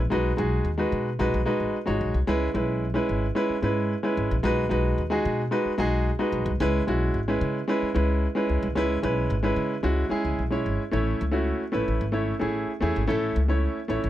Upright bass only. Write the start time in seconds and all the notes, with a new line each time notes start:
0.12 B1
0.38 B1
0.65 D#2
0.92 B2
1.19 B1
1.34 B1
1.60 A1
1.88 G#1
2.01 B1
2.14 C2
2.28 C#2
2.55 B1
3.09 G#1
3.49 muted upright bass stroke
3.63 G#2
4.17 G#1
4.31 A#1
4.44 B1
4.71 B1
4.98 D#2
5.25 B2
5.65 muted upright bass stroke
5.78 B1
6.32 B1
6.46 C2
6.60 C#2
6.88 B1
7.14 G#1
7.41 C#3
7.82 muted upright bass stroke
7.96 C#2
8.49 C#2
8.62 C2
8.76 C#2
9.03 B1
9.30 G#1
9.56 C#3
9.84 C#2
10.11 muted upright bass stroke
10.25 C#2
10.39 B1
10.66 G#1
10.93 A1
11.21 C#2
11.74 A1
11.88 A1
12.01 G#1
12.42 A1
12.82 E2
12.96 G#1
13.10 A1
13.36 C#2
13.90 A1
14.04 A1